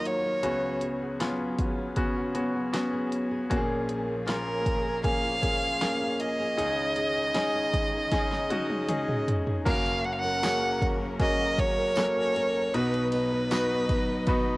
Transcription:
Already playing: D#2 D#3 F#3 A#3 D#4 F4 F#4 A#4
0.05 F#4 C#5, closed hi-hat
0.25 A#4
0.43 C#2 C#3 B3 C#4 F#4 G#4, closed hi-hat
0.64 F#4
0.81 G#4, closed hi-hat
1.02 F#4
1.20 F#3 B3 C#4 F4, snare, closed hi-hat
1.40 G#4
1.59 F#4, kick, closed hi-hat
1.78 G#4
1.96 C#3 B3 C#4 F#4, kick, closed hi-hat
2.16 F#4
2.34 B3 C#4 F#4 G#4, closed hi-hat
2.55 F#4
2.72 F#3 B3 C#4 F#4, snare, closed hi-hat
2.93 G#4
3.12 F#4, closed hi-hat
3.31 G#4
3.50 A#1 A#2 F3 A#3 C#4 F#4, kick, closed hi-hat
3.57 G#4
3.70 F4
3.89 G#4, closed hi-hat
4.09 F4
4.26 A#3 C#4 F4 A#4, snare, closed hi-hat
4.47 G#4
4.66 F4, kick, closed hi-hat
4.85 G#4
5.03 A#3 C#4 G#4 F5, kick, closed hi-hat
5.24 F4
5.42 A#3 C#4 G#4, kick, closed hi-hat
5.63 F4
5.81 A#3 C#4 G#4, snare, closed hi-hat
6.01 G#4
6.20 F4 D#5, closed hi-hat
6.40 G#4
6.57 C#2 C#3 D#3 G#3 C#4 D#4 G#4, closed hi-hat
6.78 D#4
6.96 G#4, closed hi-hat
7.17 D#4
7.34 G#3 C#4 D#4 G#4, snare, closed hi-hat
7.55 G#4
7.73 D#4, kick, closed hi-hat
7.93 G#4
8.11 C#3 C#4 D#4 G#4, kick, snare, closed hi-hat
8.32 D#4, snare
8.50 C#4 D#4 F#4 G#4, closed hi-hat, high tom
8.70 D#4, high tom
8.88 G#3 C#4 D#4 G#4, closed hi-hat, mid tom
9.08 G#4, mid tom
9.27 D#4, closed hi-hat, floor tom
9.46 G#4, floor tom
9.65 F#1 F#2 F#3 A#3 C#4 F#4 A#4 F5, kick, crash, ride
9.85 F#4, ride
10.04 C#4 F#5, ride
10.13 F5
10.19 F#5
10.24 A#4
10.43 A#3 C#4 F#4 G#4, snare, ride, tambourine
10.63 F#4
10.82 A#4, kick, ride
11.01 F#4
11.19 F#3 A#3 C#4 F#4 G#4 D#5, kick, ride
11.39 F#4
11.58 C#4 C#5, kick, ride
11.78 A#4
11.96 A#3 C#4 F#4 A4, snare, ride, tambourine
12.03 A#4
12.17 F#4
12.36 A#4, ride
12.55 F#4
12.73 B1 B2 F#3 B3 D#4 F#4 B4 D#5, ride
12.94 D#4, ride
13.12 B3 B4, ride
13.32 B4
13.51 B3 D#4 F#4 B4, snare, ride, tambourine
13.71 D#4
13.89 B4, kick, ride
14.09 D#4
14.27 B2 B3 D#4 F#4 B4, kick, ride
14.48 D#4

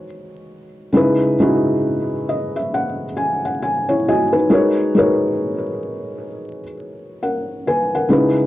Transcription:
0.92 C#3 G#3 D#4 E4
0.97 B4
1.39 C#3 G#3 D#4 E4 F#4
2.29 D#5
2.56 E5
2.74 F#5
3.17 G#5
3.45 F#5
3.63 G#5
3.89 E4 C#5
4.08 F#4 D#5 G#5
4.33 D#4 B4
4.50 G#3 D#4 F#4 A#4 B4 C#5
4.95 G#3 D#4 F#4 A#4 B4
4.99 C#5
7.23 A#4 F#5
7.67 B4 G#5
7.95 A#4 F#5
8.09 C#3 G#3 D#4 E4 B4

